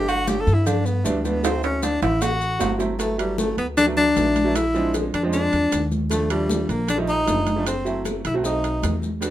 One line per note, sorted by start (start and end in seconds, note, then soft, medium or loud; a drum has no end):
0.00 0.41 G1 medium
0.00 0.43 E3 medium
0.00 0.43 A3 medium
0.00 0.43 B3 medium
0.00 0.43 D4 medium
0.08 0.30 F#4 loud
0.08 high conga soft
0.08 low agogo loud
0.08 maracas soft
0.27 0.42 G4 medium
0.27 cowbell medium
0.27 high conga loud
0.27 low agogo medium
0.27 maracas medium
0.41 0.55 A4 loud
0.47 1.01 G2 loud
0.47 high conga soft
0.47 maracas soft
0.54 0.68 E4 medium
0.66 0.87 D4 medium
0.66 cowbell loud
0.66 high conga soft
0.66 low conga medium
0.66 low agogo loud
0.66 maracas medium
0.85 1.07 B3 medium
0.85 high conga soft
0.85 maracas soft
1.04 1.96 D2 medium
1.04 1.18 E3 medium
1.04 1.26 G3 medium
1.04 1.19 A3 medium
1.04 1.19 B3 medium
1.04 1.19 D4 medium
1.04 cowbell medium
1.04 high conga medium
1.04 low timbale medium
1.04 low agogo medium
1.04 maracas medium
1.24 1.38 E3 medium
1.24 1.38 A3 medium
1.24 1.38 B3 medium
1.24 1.46 B3 medium
1.24 1.38 D4 medium
1.24 high conga loud
1.24 low agogo medium
1.24 maracas soft
1.43 1.98 F#3 medium
1.43 1.98 A3 medium
1.43 1.98 C4 medium
1.43 1.64 C4 medium
1.43 1.98 E4 medium
1.43 cowbell medium
1.43 high conga soft
1.43 high timbale medium
1.43 low agogo loud
1.43 maracas medium
1.63 1.84 C#4 medium
1.63 high conga soft
1.63 high timbale medium
1.63 maracas soft
1.83 2.02 D4 medium
1.83 cowbell medium
1.83 high conga medium
1.83 high timbale medium
1.83 low agogo medium
1.83 maracas medium
2.02 2.57 A1 loud
2.02 2.24 E4 medium
2.02 cowbell medium
2.02 high conga soft
2.02 high timbale medium
2.02 low agogo medium
2.02 maracas soft
2.21 2.80 F#4 medium
2.21 cowbell medium
2.21 high conga soft
2.21 low timbale medium
2.21 low agogo medium
2.21 maracas medium
2.41 high conga soft
2.41 maracas soft
2.59 3.52 G1 medium
2.59 2.73 F#3 medium
2.59 2.74 A3 medium
2.59 2.74 C4 medium
2.59 2.74 E4 medium
2.59 cowbell medium
2.59 high conga medium
2.59 low timbale loud
2.59 low agogo loud
2.59 maracas medium
2.78 2.93 F#3 medium
2.78 2.93 A3 medium
2.78 2.93 C4 medium
2.78 2.94 E4 medium
2.78 high conga medium
2.78 low timbale medium
2.78 low agogo medium
2.78 maracas soft
2.98 3.13 F#3 medium
2.98 3.13 A3 soft
2.98 3.18 A3 medium
2.98 3.13 B3 medium
2.98 3.13 E4 medium
2.98 high bongo medium
2.98 high conga soft
2.98 high timbale medium
2.98 maracas medium
3.18 3.66 F#3 medium
3.18 3.37 G3 medium
3.18 3.66 A3 medium
3.18 3.66 B3 medium
3.18 3.67 E4 medium
3.18 high conga soft
3.18 high timbale medium
3.18 maracas soft
3.38 3.57 A3 medium
3.38 high bongo medium
3.38 high conga loud
3.38 maracas medium
3.57 4.12 D2 medium
3.57 3.67 B3 medium
3.57 high bongo soft
3.57 high conga soft
3.57 high timbale medium
3.57 maracas soft
3.77 3.86 D4 loud
3.77 high bongo medium
3.77 high conga soft
3.77 low conga medium
3.77 high timbale medium
3.77 maracas medium
3.86 4.07 F#3 medium
3.86 4.07 A3 medium
3.86 4.07 B3 medium
3.86 4.08 D4 medium
3.97 4.57 D4 loud
3.97 high bongo soft
3.97 high conga soft
3.97 low conga medium
3.97 maracas soft
4.16 5.08 A#1 medium
4.16 4.36 F#3 medium
4.16 4.37 A3 medium
4.16 4.37 B3 medium
4.16 4.37 E4 medium
4.16 high bongo soft
4.16 low bongo medium
4.16 high conga medium
4.16 high timbale medium
4.16 maracas medium
4.36 high conga medium
4.36 high timbale medium
4.36 maracas soft
4.44 4.55 F#3 medium
4.44 4.55 A3 medium
4.44 4.55 B3 medium
4.44 4.55 E4 medium
4.55 4.94 E4 loud
4.55 high bongo medium
4.55 high conga soft
4.55 high timbale medium
4.55 maracas medium
4.74 5.09 F3 medium
4.74 5.09 G#3 medium
4.74 5.09 C4 medium
4.74 5.09 D4 medium
4.74 high conga soft
4.74 maracas soft
4.94 high bongo medium
4.94 high conga medium
4.94 high timbale medium
4.94 maracas medium
5.14 5.50 F2 medium
5.14 5.23 D4 medium
5.14 high bongo soft
5.14 high conga soft
5.14 high timbale medium
5.14 maracas soft
5.23 5.78 F3 medium
5.23 5.78 G#3 medium
5.23 5.78 C4 medium
5.23 5.78 D4 medium
5.33 5.88 D4 loud
5.33 high bongo medium
5.33 high conga soft
5.33 maracas medium
5.52 5.71 E2 medium
5.52 high bongo soft
5.52 high conga soft
5.52 high timbale medium
5.52 maracas soft
5.72 6.64 D#2 medium
5.72 high bongo soft
5.72 low bongo medium
5.72 high conga medium
5.72 high timbale medium
5.72 maracas medium
5.92 high conga medium
5.92 maracas soft
6.10 6.24 F3 medium
6.10 6.25 G3 medium
6.10 6.29 A3 medium
6.10 6.25 A3 medium
6.10 6.25 D4 medium
6.10 high bongo medium
6.10 high conga soft
6.10 high timbale medium
6.10 maracas medium
6.30 6.78 F3 medium
6.30 6.78 G3 medium
6.30 6.67 G3 medium
6.30 6.78 A3 medium
6.30 6.79 D4 medium
6.30 high conga soft
6.30 high timbale medium
6.30 maracas soft
6.49 high bongo soft
6.49 high conga medium
6.49 maracas medium
6.69 7.24 A#1 medium
6.69 6.88 A#3 medium
6.69 high bongo soft
6.69 high conga soft
6.69 high timbale medium
6.69 maracas soft
6.88 6.98 D4 medium
6.88 high bongo medium
6.88 high conga soft
6.88 low conga medium
6.88 high timbale medium
6.88 maracas medium
6.98 7.19 F3 medium
6.98 7.19 G3 medium
6.98 7.19 A3 medium
6.98 7.19 D#4 medium
7.08 7.63 D#4 loud
7.08 high bongo soft
7.08 high conga soft
7.08 maracas soft
7.26 8.19 F#1 medium
7.26 7.48 F3 medium
7.26 7.48 G3 medium
7.26 7.48 A3 medium
7.26 7.48 D4 medium
7.26 high bongo soft
7.26 low bongo medium
7.26 high conga medium
7.26 high timbale medium
7.26 low timbale medium
7.26 maracas medium
7.47 high conga medium
7.47 high timbale medium
7.47 maracas soft
7.56 7.66 F3 medium
7.56 7.66 G3 medium
7.56 7.67 A3 medium
7.56 7.67 D4 medium
7.66 8.03 C4 medium
7.66 high bongo medium
7.66 high conga soft
7.66 high timbale loud
7.66 maracas medium
7.85 8.20 F#3 medium
7.85 8.20 A3 medium
7.85 8.20 C4 medium
7.85 8.20 E4 medium
7.85 high conga soft
7.85 maracas soft
8.05 high bongo medium
8.05 high conga medium
8.05 high timbale medium
8.05 maracas medium
8.25 8.79 B1 medium
8.25 8.35 E4 medium
8.25 high bongo soft
8.25 high conga soft
8.25 high timbale medium
8.25 maracas soft
8.34 8.42 F#3 medium
8.34 8.42 A3 medium
8.34 8.43 C4 medium
8.34 8.45 F#4 medium
8.44 9.06 F#3 medium
8.44 9.06 A3 medium
8.44 9.07 C4 medium
8.44 9.07 D#4 medium
8.44 8.99 D#4 medium
8.44 high bongo medium
8.44 high conga soft
8.44 maracas medium
8.64 high bongo soft
8.64 high conga soft
8.64 high timbale medium
8.64 maracas soft
8.82 9.30 E2 medium
8.82 high bongo soft
8.82 low bongo medium
8.82 high conga medium
8.82 high timbale medium
8.82 low timbale medium
8.82 maracas medium
9.02 high conga medium
9.02 maracas soft
9.21 9.30 G3 medium
9.21 9.30 B3 medium
9.21 9.30 D4 medium
9.21 9.30 F#4 medium
9.21 high bongo medium
9.21 high conga soft
9.21 high timbale medium
9.21 maracas medium